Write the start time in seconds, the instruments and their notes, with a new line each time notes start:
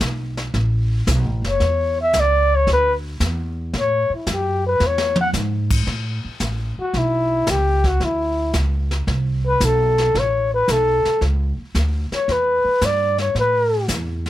0.00 upright bass B1, kick, snare, hi-hat pedal
0.37 snare
0.54 upright bass A1, brush sweep, kick, snare
1.07 upright bass B1, kick, snare, hi-hat pedal
1.25 upright bass A1
1.42 upright bass F#1, snare
1.48 flugelhorn C#5
1.60 upright bass E2, brush sweep, kick, snare
2.01 flugelhorn E5
2.13 upright bass C#2, kick, snare, hi-hat pedal
2.20 flugelhorn D5
2.55 flugelhorn C#5
2.67 upright bass D2, brush sweep, kick, snare
2.73 flugelhorn B4
3.20 upright bass E2, kick, snare, hi-hat pedal
3.73 upright bass A2, brush sweep, kick, snare
3.79 flugelhorn C#5
4.10 muted upright bass stroke
4.15 flugelhorn E4
4.27 upright bass F#2, kick, snare, hi-hat pedal
4.33 flugelhorn G4
4.67 flugelhorn B4
4.80 upright bass E2, snare
4.87 flugelhorn C#5
4.98 snare
5.16 mid tom
5.21 flugelhorn F#5
5.33 upright bass G#2, snare, hi-hat pedal
5.70 kick, crash
5.87 upright bass A2, brush sweep, kick, snare
6.25 muted upright bass stroke
6.40 upright bass A1, kick, snare, hi-hat pedal
6.78 flugelhorn F#4, muted upright bass stroke
6.94 upright bass B1, brush sweep, kick, snare
6.98 flugelhorn E4
7.47 upright bass C#2, flugelhorn G4, kick, snare, hi-hat pedal
7.84 flugelhorn F#4, kick, snare
8.00 upright bass D2, brush sweep, snare
8.04 flugelhorn E4
8.53 upright bass C#2, kick, snare, hi-hat pedal
8.91 snare
9.07 upright bass C2, brush sweep, kick, snare
9.47 flugelhorn B4
9.60 upright bass B1, kick, snare, hi-hat pedal
9.65 flugelhorn A4
9.98 snare
10.15 upright bass A1, brush sweep, kick, snare
10.19 flugelhorn C#5
10.54 flugelhorn B4
10.68 upright bass B1, flugelhorn A4, kick, snare, hi-hat pedal
11.05 muted upright bass stroke, snare
11.21 upright bass C#2, brush sweep, kick, snare
11.58 muted upright bass stroke
11.75 upright bass D2, kick, snare, hi-hat pedal
12.11 flugelhorn C#5, muted upright bass stroke, snare
12.28 upright bass E2, flugelhorn B4, brush sweep, kick, snare
12.64 muted upright bass stroke
12.81 upright bass G2, flugelhorn D5, kick, snare, hi-hat pedal
13.18 flugelhorn C#5, snare
13.35 upright bass A2, brush sweep, kick, snare
13.39 flugelhorn B4
13.88 upright bass E2, kick, snare, hi-hat pedal
14.26 snare